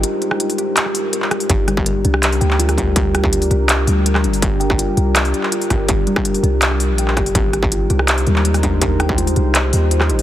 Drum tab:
HH |x-x-xox-x-o-x-xo|x-x-x-x-xox-xox-|x-x-xox-x-o-x-xo|x-x-x-x-xox-xox-|
CP |--------x----x--|--------x--x----|--------x----x--|--------x--x----|
SD |---r-----r----r-|--r----r-----r--|--r-----r----r--|---r----r-----r-|
BD |----------------|o--o----------o-|o--o------------|o--o----------o-|

HH |x-x-xox-x-o-x-xo|x-x-x-x-xox-xox-|x-x-xox-x-o-x-xo|
CP |--------x----x--|--------x--x----|--------x----x--|
SD |---r-----r----r-|--r----r-----r--|--r-----r----r--|
BD |o--o----------o-|o--o----------o-|o--o------------|